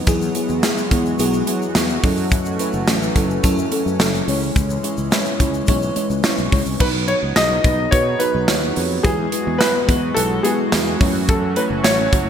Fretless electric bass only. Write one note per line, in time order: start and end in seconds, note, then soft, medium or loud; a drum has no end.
0.07 0.28 E2 loud
0.49 0.60 E2 medium
0.91 1.12 E2 medium
1.19 1.40 B1 medium
1.75 1.96 E2 loud
2.04 2.56 F#2 loud
2.74 2.84 F#1 medium
2.88 3.09 A1 medium
3.16 3.37 F#1 medium
3.44 3.65 F#2 loud
3.86 3.96 F#2 medium
4.00 4.21 F#1 medium
4.28 4.49 C#2 loud
4.56 4.77 C#2 loud
4.98 5.08 C#2 medium
5.40 5.61 C#2 medium
5.68 5.89 B1 loud
5.96 muted fretless electric bass stroke soft
6.10 6.21 C#2 medium
6.38 6.49 B1 medium
6.53 6.63 C#2 medium
6.66 6.77 C2 medium
6.80 7.12 B1 loud
7.23 7.33 C#2 medium
7.37 7.57 B1 medium
7.65 7.85 B1 loud
7.92 8.13 B2 loud
8.35 8.45 B1 medium
8.49 8.70 D#2 medium
8.77 8.98 F2 loud
9.04 9.25 E2 loud
9.47 9.57 E2 loud
9.88 10.10 E2 loud
10.17 10.38 B1 loud
10.73 10.94 E2 loud
11.01 11.53 F#2 loud
11.70 11.81 F#1 medium
11.85 12.06 A1 loud
12.12 12.29 F#1 loud